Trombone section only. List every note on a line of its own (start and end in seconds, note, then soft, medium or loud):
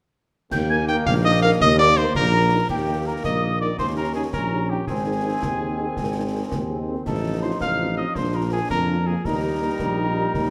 0.52 2.48 D#3 medium
0.52 2.48 A#3 medium
2.70 4.84 D#3 medium
2.70 3.75 A#3 medium
3.79 4.88 C#4 medium
4.88 7.03 D#3 medium
4.88 7.03 C4 medium
7.06 9.08 F3 medium
7.06 8.16 D#4 medium
8.15 9.08 D4 medium
9.25 10.50 G3 medium
9.25 10.50 D#4 medium